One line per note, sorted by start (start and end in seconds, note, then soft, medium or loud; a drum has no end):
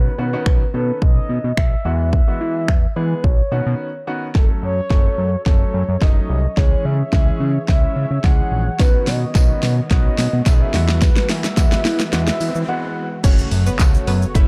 0.00 0.70 B4 medium
0.18 0.36 B2 loud
0.18 0.28 D#3 medium
0.18 0.28 B3 medium
0.18 0.28 C#4 medium
0.18 0.28 F#4 medium
0.33 0.60 D#3 medium
0.33 0.60 B3 medium
0.33 0.60 C#4 medium
0.33 0.60 F#4 loud
0.46 0.64 B1 loud
0.46 finger snap loud
0.46 kick loud
0.74 0.92 B2 loud
0.74 1.47 D#3 medium
0.74 1.47 B3 medium
0.74 1.47 C#4 medium
0.74 1.47 A4 medium
0.74 1.00 B4 medium
1.02 1.20 B1 loud
1.02 1.59 D#5 loud
1.02 kick loud
1.29 1.39 B2 loud
1.44 1.53 B2 loud
1.57 1.75 B1 medium
1.57 2.12 E5 loud
1.57 finger snap loud
1.57 kick loud
1.85 2.21 E2 loud
1.85 2.19 E3 medium
1.85 2.19 G#3 medium
1.85 2.19 B3 medium
1.85 2.19 F#4 medium
2.13 2.97 E5 loud
2.13 kick loud
2.27 2.72 E3 medium
2.27 2.72 G#3 medium
2.27 2.72 B3 medium
2.27 2.72 F#4 medium
2.41 2.70 E3 loud
2.68 2.86 E2 loud
2.68 finger snap loud
2.68 kick loud
2.96 3.24 E3 medium
2.96 3.14 E3 medium
2.96 3.24 G#3 medium
2.96 3.24 B3 medium
2.96 3.24 G#4 medium
2.96 3.25 B4 medium
3.24 3.42 B1 loud
3.24 4.07 C#5 medium
3.24 kick loud
3.51 3.61 B2 loud
3.51 3.88 D#3 medium
3.51 3.88 B3 medium
3.51 3.88 C#4 medium
3.51 3.88 F#4 medium
3.66 3.75 B2 loud
4.07 4.26 D#3 medium
4.07 4.26 B3 medium
4.07 4.26 C#4 medium
4.07 4.26 F#4 medium
4.35 4.53 F#1 medium
4.35 4.72 F#3 medium
4.35 6.55 F#3 medium
4.35 4.72 A3 medium
4.35 8.75 C#4 medium
4.35 4.72 C#4 medium
4.35 6.55 A4 medium
4.35 4.47 A4 medium
4.35 4.72 A4 medium
4.35 10.70 C#5 medium
4.35 kick loud
4.35 snare soft
4.35 riser medium
4.63 4.81 F#2 medium
4.63 5.42 C#5 medium
4.90 5.09 F#1 loud
4.90 5.27 F#3 medium
4.90 5.27 A3 medium
4.90 5.27 C#4 medium
4.90 5.27 A4 medium
4.90 kick loud
4.90 snare medium
5.18 5.36 F#2 medium
5.46 5.64 F#1 loud
5.46 5.83 F#3 medium
5.46 5.83 A3 medium
5.46 5.83 C#4 medium
5.46 5.83 A4 medium
5.46 6.03 C#5 medium
5.46 kick loud
5.46 snare medium
5.74 5.83 F#2 loud
5.89 5.97 F#2 loud
6.01 6.20 F#1 medium
6.01 6.38 F#3 medium
6.01 6.38 A3 medium
6.01 6.38 C#4 medium
6.01 6.38 D#4 medium
6.01 6.59 D#5 loud
6.01 kick loud
6.01 snare medium
6.29 6.47 C2 loud
6.57 6.75 C#2 loud
6.57 6.94 E3 medium
6.57 8.77 E3 medium
6.57 6.94 G#3 medium
6.57 6.94 C#4 medium
6.57 8.77 G#4 medium
6.57 6.94 G#4 medium
6.57 6.87 C#5 loud
6.57 kick loud
6.57 snare medium
6.85 7.03 C#3 loud
6.85 7.68 E5 loud
7.12 7.31 C#2 loud
7.12 7.49 E3 medium
7.12 7.49 G#3 medium
7.12 7.49 C#4 medium
7.12 7.49 G#4 medium
7.12 kick loud
7.12 snare medium
7.40 7.58 C#3 loud
7.68 7.86 C#2 loud
7.68 8.05 E3 medium
7.68 8.05 G#3 medium
7.68 8.05 C#4 medium
7.68 8.05 E4 medium
7.68 8.26 E5 loud
7.68 kick loud
7.68 snare medium
7.96 8.06 C#3 loud
8.11 8.19 C#3 medium
8.24 8.42 C#2 medium
8.24 8.60 E3 medium
8.24 8.61 G#3 medium
8.24 8.61 C#4 medium
8.24 8.61 G#4 medium
8.24 8.81 F#5 loud
8.24 kick loud
8.24 snare medium
8.52 8.70 A#1 loud
8.79 8.98 B1 loud
8.79 9.16 D#3 medium
8.79 10.72 D#3 medium
8.79 9.16 B3 medium
8.79 10.72 B3 medium
8.79 9.16 C#4 medium
8.79 13.20 F#4 medium
8.79 9.16 F#4 medium
8.79 9.09 B4 loud
8.79 kick loud
8.79 snare medium
8.79 closed hi-hat medium
8.79 tambourine soft
9.07 9.25 B2 loud
9.07 9.90 D#5 loud
9.07 snare medium
9.07 open hi-hat medium
9.07 tambourine soft
9.35 9.53 B1 medium
9.35 9.71 D#3 medium
9.35 9.72 B3 medium
9.35 9.72 C#4 medium
9.35 9.72 F#4 medium
9.35 kick loud
9.35 snare medium
9.35 closed hi-hat medium
9.35 tambourine medium
9.63 9.81 B2 loud
9.63 snare medium
9.63 open hi-hat medium
9.63 tambourine soft
9.90 10.09 B1 loud
9.90 10.27 D#3 medium
9.90 10.27 B3 medium
9.90 10.27 C#4 medium
9.90 10.27 F#4 medium
9.90 10.48 D#5 loud
9.90 kick loud
9.90 snare medium
9.90 closed hi-hat medium
10.18 10.28 B2 medium
10.18 snare loud
10.18 open hi-hat medium
10.18 tambourine medium
10.33 10.42 B2 loud
10.46 10.64 B1 medium
10.46 10.74 D#3 medium
10.46 10.72 B3 medium
10.46 10.74 C#4 medium
10.46 10.74 G#4 medium
10.46 10.55 E5 loud
10.46 kick loud
10.46 snare loud
10.46 closed hi-hat medium
10.46 tambourine medium
10.54 10.63 D#5 medium
10.62 11.04 E5 loud
10.74 11.10 E2 loud
10.74 11.41 E3 medium
10.74 13.21 E3 medium
10.74 11.41 G#3 medium
10.74 13.21 G#3 medium
10.74 11.41 B3 medium
10.74 11.41 F#4 medium
10.74 13.21 B4 medium
10.74 snare loud
10.74 open hi-hat medium
10.74 tambourine medium
10.88 snare loud
11.02 11.31 B4 loud
11.02 kick loud
11.02 snare loud
11.02 closed hi-hat medium
11.02 tambourine medium
11.02 shaker medium
11.16 snare loud
11.16 shaker medium
11.29 11.48 E3 loud
11.29 12.12 E5 loud
11.29 snare loud
11.29 open hi-hat medium
11.29 tambourine soft
11.29 shaker soft
11.44 snare loud
11.44 shaker medium
11.57 11.75 E2 loud
11.57 11.94 E3 medium
11.57 11.94 G#3 medium
11.57 11.94 B3 medium
11.57 11.94 F#4 medium
11.57 kick loud
11.57 snare loud
11.57 closed hi-hat medium
11.57 tambourine medium
11.57 shaker medium
11.72 snare loud
11.72 shaker medium
11.85 12.03 E3 loud
11.85 snare loud
11.85 open hi-hat medium
11.85 tambourine soft
11.85 shaker soft
12.00 snare loud
12.00 shaker medium
12.12 12.31 E2 loud
12.12 12.49 E3 medium
12.12 12.49 G#3 medium
12.12 12.49 B3 medium
12.12 12.50 F#4 medium
12.12 12.70 E5 loud
12.12 snare loud
12.12 closed hi-hat medium
12.12 tambourine soft
12.12 shaker medium
12.27 snare loud
12.27 shaker medium
12.40 12.50 E3 loud
12.40 open hi-hat medium
12.40 tambourine medium
12.40 shaker medium
12.55 12.64 E3 loud
12.55 shaker medium
12.68 13.05 E3 medium
12.68 13.05 G#3 medium
12.68 13.05 B3 medium
12.68 13.05 F#4 medium
12.68 13.24 F#5 loud
13.23 13.42 F#1 loud
13.23 14.48 C#3 medium
13.23 13.60 A3 medium
13.23 14.48 A3 medium
13.23 13.60 C#4 medium
13.23 13.48 C#4 medium
13.23 13.61 F#4 medium
13.23 14.48 F#4 medium
13.23 14.48 C#5 medium
13.23 13.47 C#5 loud
13.23 kick loud
13.23 closed hi-hat medium
13.23 crash loud
13.23 tambourine medium
13.23 impact medium
13.23 shaker medium
13.38 shaker medium
13.51 13.70 F#2 loud
13.51 open hi-hat medium
13.51 shaker soft
13.67 13.78 B3 medium
13.67 13.78 B4 medium
13.67 shaker medium
13.79 13.98 C#2 loud
13.79 14.16 A3 medium
13.79 14.03 A3 medium
13.79 14.16 C#4 medium
13.79 14.16 F#4 medium
13.79 14.03 A4 medium
13.79 kick loud
13.79 snare medium
13.79 clap loud
13.79 closed hi-hat medium
13.79 tambourine medium
13.79 shaker medium
13.94 shaker medium
14.07 14.25 F#2 loud
14.07 14.20 B3 medium
14.07 14.20 B4 medium
14.07 open hi-hat medium
14.07 tambourine medium
14.07 shaker soft
14.22 shaker medium
14.35 14.48 F#1 loud
14.35 14.48 A3 loud
14.35 14.48 C#4 medium
14.35 14.48 E4 loud
14.35 kick loud
14.35 closed hi-hat medium
14.35 shaker medium